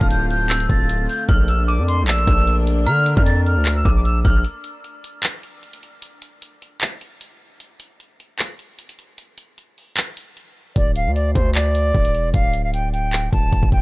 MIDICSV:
0, 0, Header, 1, 6, 480
1, 0, Start_track
1, 0, Tempo, 394737
1, 1565, Time_signature, 4, 2, 24, 8
1, 16801, End_track
2, 0, Start_track
2, 0, Title_t, "Flute"
2, 0, Program_c, 0, 73
2, 12, Note_on_c, 0, 89, 73
2, 101, Note_off_c, 0, 89, 0
2, 125, Note_on_c, 0, 91, 90
2, 314, Note_off_c, 0, 91, 0
2, 361, Note_on_c, 0, 91, 92
2, 814, Note_off_c, 0, 91, 0
2, 843, Note_on_c, 0, 93, 84
2, 1295, Note_off_c, 0, 93, 0
2, 1330, Note_on_c, 0, 91, 90
2, 1516, Note_off_c, 0, 91, 0
2, 1560, Note_on_c, 0, 89, 87
2, 1750, Note_off_c, 0, 89, 0
2, 1800, Note_on_c, 0, 88, 92
2, 1990, Note_off_c, 0, 88, 0
2, 2035, Note_on_c, 0, 86, 86
2, 2227, Note_off_c, 0, 86, 0
2, 2283, Note_on_c, 0, 84, 90
2, 2472, Note_off_c, 0, 84, 0
2, 2521, Note_on_c, 0, 88, 105
2, 3112, Note_off_c, 0, 88, 0
2, 3478, Note_on_c, 0, 89, 114
2, 3826, Note_off_c, 0, 89, 0
2, 3854, Note_on_c, 0, 89, 74
2, 3942, Note_off_c, 0, 89, 0
2, 3963, Note_on_c, 0, 93, 82
2, 4152, Note_off_c, 0, 93, 0
2, 4207, Note_on_c, 0, 89, 83
2, 4551, Note_off_c, 0, 89, 0
2, 4571, Note_on_c, 0, 88, 81
2, 4760, Note_off_c, 0, 88, 0
2, 4811, Note_on_c, 0, 86, 77
2, 4900, Note_off_c, 0, 86, 0
2, 4919, Note_on_c, 0, 88, 88
2, 5110, Note_off_c, 0, 88, 0
2, 5162, Note_on_c, 0, 89, 80
2, 5351, Note_off_c, 0, 89, 0
2, 13085, Note_on_c, 0, 74, 97
2, 13273, Note_off_c, 0, 74, 0
2, 13327, Note_on_c, 0, 77, 81
2, 13514, Note_off_c, 0, 77, 0
2, 13560, Note_on_c, 0, 74, 88
2, 13750, Note_off_c, 0, 74, 0
2, 13804, Note_on_c, 0, 72, 89
2, 13992, Note_off_c, 0, 72, 0
2, 14042, Note_on_c, 0, 74, 94
2, 14955, Note_off_c, 0, 74, 0
2, 15000, Note_on_c, 0, 77, 101
2, 15347, Note_off_c, 0, 77, 0
2, 15371, Note_on_c, 0, 77, 71
2, 15460, Note_off_c, 0, 77, 0
2, 15486, Note_on_c, 0, 79, 86
2, 15674, Note_off_c, 0, 79, 0
2, 15720, Note_on_c, 0, 79, 86
2, 16174, Note_off_c, 0, 79, 0
2, 16200, Note_on_c, 0, 81, 83
2, 16653, Note_off_c, 0, 81, 0
2, 16688, Note_on_c, 0, 79, 84
2, 16801, Note_off_c, 0, 79, 0
2, 16801, End_track
3, 0, Start_track
3, 0, Title_t, "Synth bell"
3, 0, Program_c, 1, 98
3, 0, Note_on_c, 1, 81, 109
3, 555, Note_off_c, 1, 81, 0
3, 605, Note_on_c, 1, 88, 91
3, 1056, Note_off_c, 1, 88, 0
3, 1569, Note_on_c, 1, 89, 109
3, 2018, Note_off_c, 1, 89, 0
3, 2045, Note_on_c, 1, 86, 91
3, 2496, Note_off_c, 1, 86, 0
3, 3485, Note_on_c, 1, 82, 98
3, 4636, Note_off_c, 1, 82, 0
3, 4685, Note_on_c, 1, 86, 78
3, 5136, Note_off_c, 1, 86, 0
3, 5166, Note_on_c, 1, 89, 89
3, 5393, Note_off_c, 1, 89, 0
3, 16801, End_track
4, 0, Start_track
4, 0, Title_t, "String section"
4, 0, Program_c, 2, 48
4, 0, Note_on_c, 2, 50, 83
4, 0, Note_on_c, 2, 57, 74
4, 0, Note_on_c, 2, 60, 76
4, 0, Note_on_c, 2, 65, 91
4, 1517, Note_off_c, 2, 60, 0
4, 1527, Note_off_c, 2, 50, 0
4, 1527, Note_off_c, 2, 65, 0
4, 1565, Note_on_c, 2, 58, 76
4, 1565, Note_on_c, 2, 62, 94
4, 5357, Note_off_c, 2, 57, 0
4, 5366, Note_off_c, 2, 62, 0
4, 5367, Note_off_c, 2, 58, 0
4, 16801, End_track
5, 0, Start_track
5, 0, Title_t, "808-style bass"
5, 0, Program_c, 3, 38
5, 13, Note_on_c, 3, 26, 104
5, 812, Note_off_c, 3, 26, 0
5, 845, Note_on_c, 3, 26, 109
5, 1306, Note_off_c, 3, 26, 0
5, 1565, Note_on_c, 3, 34, 103
5, 2172, Note_on_c, 3, 41, 98
5, 2190, Note_off_c, 3, 34, 0
5, 2468, Note_on_c, 3, 34, 102
5, 2486, Note_off_c, 3, 41, 0
5, 2750, Note_off_c, 3, 34, 0
5, 2765, Note_on_c, 3, 34, 113
5, 3484, Note_on_c, 3, 50, 97
5, 3503, Note_off_c, 3, 34, 0
5, 3834, Note_off_c, 3, 50, 0
5, 3853, Note_on_c, 3, 41, 110
5, 4333, Note_on_c, 3, 38, 100
5, 4351, Note_off_c, 3, 41, 0
5, 4668, Note_off_c, 3, 38, 0
5, 4685, Note_on_c, 3, 34, 111
5, 5146, Note_off_c, 3, 34, 0
5, 5165, Note_on_c, 3, 34, 105
5, 5395, Note_off_c, 3, 34, 0
5, 13085, Note_on_c, 3, 26, 103
5, 13452, Note_on_c, 3, 38, 94
5, 13470, Note_off_c, 3, 26, 0
5, 13787, Note_off_c, 3, 38, 0
5, 13805, Note_on_c, 3, 38, 100
5, 14496, Note_off_c, 3, 38, 0
5, 14526, Note_on_c, 3, 26, 112
5, 14764, Note_on_c, 3, 28, 100
5, 14782, Note_off_c, 3, 26, 0
5, 14993, Note_off_c, 3, 28, 0
5, 15005, Note_on_c, 3, 26, 108
5, 16157, Note_off_c, 3, 26, 0
5, 16205, Note_on_c, 3, 26, 105
5, 16435, Note_off_c, 3, 26, 0
5, 16445, Note_on_c, 3, 26, 107
5, 16564, Note_off_c, 3, 26, 0
5, 16571, Note_on_c, 3, 26, 105
5, 16680, Note_off_c, 3, 26, 0
5, 16685, Note_on_c, 3, 26, 102
5, 16801, Note_off_c, 3, 26, 0
5, 16801, End_track
6, 0, Start_track
6, 0, Title_t, "Drums"
6, 13, Note_on_c, 9, 36, 89
6, 128, Note_on_c, 9, 42, 73
6, 134, Note_off_c, 9, 36, 0
6, 250, Note_off_c, 9, 42, 0
6, 371, Note_on_c, 9, 42, 72
6, 493, Note_off_c, 9, 42, 0
6, 604, Note_on_c, 9, 39, 125
6, 605, Note_on_c, 9, 42, 69
6, 726, Note_off_c, 9, 39, 0
6, 726, Note_off_c, 9, 42, 0
6, 732, Note_on_c, 9, 42, 67
6, 845, Note_on_c, 9, 36, 94
6, 847, Note_off_c, 9, 42, 0
6, 847, Note_on_c, 9, 42, 81
6, 966, Note_off_c, 9, 36, 0
6, 968, Note_off_c, 9, 42, 0
6, 1088, Note_on_c, 9, 42, 81
6, 1209, Note_off_c, 9, 42, 0
6, 1329, Note_on_c, 9, 46, 73
6, 1451, Note_off_c, 9, 46, 0
6, 1564, Note_on_c, 9, 42, 87
6, 1565, Note_on_c, 9, 36, 116
6, 1686, Note_off_c, 9, 42, 0
6, 1687, Note_off_c, 9, 36, 0
6, 1802, Note_on_c, 9, 42, 96
6, 1924, Note_off_c, 9, 42, 0
6, 2048, Note_on_c, 9, 42, 72
6, 2170, Note_off_c, 9, 42, 0
6, 2291, Note_on_c, 9, 42, 71
6, 2413, Note_off_c, 9, 42, 0
6, 2525, Note_on_c, 9, 39, 121
6, 2525, Note_on_c, 9, 42, 66
6, 2646, Note_off_c, 9, 39, 0
6, 2647, Note_off_c, 9, 42, 0
6, 2652, Note_on_c, 9, 42, 64
6, 2765, Note_on_c, 9, 36, 94
6, 2767, Note_off_c, 9, 42, 0
6, 2767, Note_on_c, 9, 42, 83
6, 2887, Note_off_c, 9, 36, 0
6, 2889, Note_off_c, 9, 42, 0
6, 3008, Note_on_c, 9, 42, 78
6, 3129, Note_off_c, 9, 42, 0
6, 3249, Note_on_c, 9, 42, 75
6, 3371, Note_off_c, 9, 42, 0
6, 3484, Note_on_c, 9, 42, 88
6, 3606, Note_off_c, 9, 42, 0
6, 3723, Note_on_c, 9, 42, 96
6, 3844, Note_off_c, 9, 42, 0
6, 3853, Note_on_c, 9, 36, 88
6, 3969, Note_on_c, 9, 42, 71
6, 3975, Note_off_c, 9, 36, 0
6, 4091, Note_off_c, 9, 42, 0
6, 4212, Note_on_c, 9, 42, 70
6, 4334, Note_off_c, 9, 42, 0
6, 4443, Note_on_c, 9, 42, 80
6, 4445, Note_on_c, 9, 39, 124
6, 4565, Note_off_c, 9, 42, 0
6, 4566, Note_off_c, 9, 39, 0
6, 4685, Note_on_c, 9, 36, 95
6, 4687, Note_on_c, 9, 42, 80
6, 4806, Note_off_c, 9, 36, 0
6, 4808, Note_off_c, 9, 42, 0
6, 4927, Note_on_c, 9, 42, 79
6, 5049, Note_off_c, 9, 42, 0
6, 5165, Note_on_c, 9, 36, 104
6, 5169, Note_on_c, 9, 46, 75
6, 5287, Note_off_c, 9, 36, 0
6, 5290, Note_off_c, 9, 46, 0
6, 5404, Note_on_c, 9, 42, 82
6, 5525, Note_off_c, 9, 42, 0
6, 5642, Note_on_c, 9, 42, 92
6, 5764, Note_off_c, 9, 42, 0
6, 5889, Note_on_c, 9, 42, 68
6, 6010, Note_off_c, 9, 42, 0
6, 6131, Note_on_c, 9, 42, 72
6, 6253, Note_off_c, 9, 42, 0
6, 6363, Note_on_c, 9, 42, 77
6, 6364, Note_on_c, 9, 39, 124
6, 6484, Note_off_c, 9, 42, 0
6, 6486, Note_off_c, 9, 39, 0
6, 6606, Note_on_c, 9, 42, 73
6, 6728, Note_off_c, 9, 42, 0
6, 6845, Note_on_c, 9, 42, 60
6, 6966, Note_off_c, 9, 42, 0
6, 6972, Note_on_c, 9, 42, 58
6, 7089, Note_off_c, 9, 42, 0
6, 7089, Note_on_c, 9, 42, 65
6, 7210, Note_off_c, 9, 42, 0
6, 7323, Note_on_c, 9, 42, 83
6, 7445, Note_off_c, 9, 42, 0
6, 7562, Note_on_c, 9, 42, 92
6, 7684, Note_off_c, 9, 42, 0
6, 7808, Note_on_c, 9, 42, 69
6, 7930, Note_off_c, 9, 42, 0
6, 8051, Note_on_c, 9, 42, 71
6, 8173, Note_off_c, 9, 42, 0
6, 8283, Note_on_c, 9, 42, 74
6, 8284, Note_on_c, 9, 39, 121
6, 8404, Note_off_c, 9, 42, 0
6, 8406, Note_off_c, 9, 39, 0
6, 8526, Note_on_c, 9, 42, 79
6, 8648, Note_off_c, 9, 42, 0
6, 8767, Note_on_c, 9, 42, 69
6, 8889, Note_off_c, 9, 42, 0
6, 9244, Note_on_c, 9, 42, 86
6, 9365, Note_off_c, 9, 42, 0
6, 9482, Note_on_c, 9, 42, 96
6, 9604, Note_off_c, 9, 42, 0
6, 9729, Note_on_c, 9, 42, 68
6, 9850, Note_off_c, 9, 42, 0
6, 9971, Note_on_c, 9, 42, 67
6, 10092, Note_off_c, 9, 42, 0
6, 10202, Note_on_c, 9, 42, 74
6, 10203, Note_on_c, 9, 39, 120
6, 10324, Note_off_c, 9, 42, 0
6, 10325, Note_off_c, 9, 39, 0
6, 10447, Note_on_c, 9, 42, 71
6, 10568, Note_off_c, 9, 42, 0
6, 10685, Note_on_c, 9, 42, 61
6, 10806, Note_off_c, 9, 42, 0
6, 10812, Note_on_c, 9, 42, 61
6, 10929, Note_off_c, 9, 42, 0
6, 10929, Note_on_c, 9, 42, 67
6, 11050, Note_off_c, 9, 42, 0
6, 11164, Note_on_c, 9, 42, 85
6, 11285, Note_off_c, 9, 42, 0
6, 11402, Note_on_c, 9, 42, 90
6, 11524, Note_off_c, 9, 42, 0
6, 11648, Note_on_c, 9, 42, 70
6, 11770, Note_off_c, 9, 42, 0
6, 11891, Note_on_c, 9, 46, 56
6, 12013, Note_off_c, 9, 46, 0
6, 12123, Note_on_c, 9, 42, 75
6, 12125, Note_on_c, 9, 39, 121
6, 12245, Note_off_c, 9, 42, 0
6, 12246, Note_off_c, 9, 39, 0
6, 12367, Note_on_c, 9, 42, 79
6, 12489, Note_off_c, 9, 42, 0
6, 12608, Note_on_c, 9, 42, 73
6, 12729, Note_off_c, 9, 42, 0
6, 13084, Note_on_c, 9, 42, 83
6, 13085, Note_on_c, 9, 36, 110
6, 13205, Note_off_c, 9, 42, 0
6, 13206, Note_off_c, 9, 36, 0
6, 13322, Note_on_c, 9, 42, 96
6, 13444, Note_off_c, 9, 42, 0
6, 13569, Note_on_c, 9, 42, 70
6, 13690, Note_off_c, 9, 42, 0
6, 13805, Note_on_c, 9, 36, 89
6, 13811, Note_on_c, 9, 42, 69
6, 13927, Note_off_c, 9, 36, 0
6, 13933, Note_off_c, 9, 42, 0
6, 14043, Note_on_c, 9, 42, 75
6, 14044, Note_on_c, 9, 39, 118
6, 14165, Note_off_c, 9, 42, 0
6, 14166, Note_off_c, 9, 39, 0
6, 14287, Note_on_c, 9, 42, 74
6, 14408, Note_off_c, 9, 42, 0
6, 14525, Note_on_c, 9, 42, 60
6, 14526, Note_on_c, 9, 36, 87
6, 14647, Note_off_c, 9, 36, 0
6, 14647, Note_off_c, 9, 42, 0
6, 14652, Note_on_c, 9, 42, 59
6, 14769, Note_off_c, 9, 42, 0
6, 14769, Note_on_c, 9, 42, 66
6, 14890, Note_off_c, 9, 42, 0
6, 15004, Note_on_c, 9, 42, 83
6, 15005, Note_on_c, 9, 36, 108
6, 15125, Note_off_c, 9, 42, 0
6, 15126, Note_off_c, 9, 36, 0
6, 15242, Note_on_c, 9, 42, 94
6, 15364, Note_off_c, 9, 42, 0
6, 15488, Note_on_c, 9, 42, 68
6, 15610, Note_off_c, 9, 42, 0
6, 15731, Note_on_c, 9, 42, 71
6, 15853, Note_off_c, 9, 42, 0
6, 15963, Note_on_c, 9, 42, 77
6, 15964, Note_on_c, 9, 39, 119
6, 16085, Note_off_c, 9, 42, 0
6, 16086, Note_off_c, 9, 39, 0
6, 16205, Note_on_c, 9, 36, 91
6, 16207, Note_on_c, 9, 42, 80
6, 16326, Note_off_c, 9, 36, 0
6, 16328, Note_off_c, 9, 42, 0
6, 16445, Note_on_c, 9, 36, 92
6, 16447, Note_on_c, 9, 42, 71
6, 16567, Note_off_c, 9, 36, 0
6, 16569, Note_off_c, 9, 42, 0
6, 16571, Note_on_c, 9, 36, 91
6, 16685, Note_off_c, 9, 36, 0
6, 16685, Note_on_c, 9, 36, 100
6, 16801, Note_off_c, 9, 36, 0
6, 16801, End_track
0, 0, End_of_file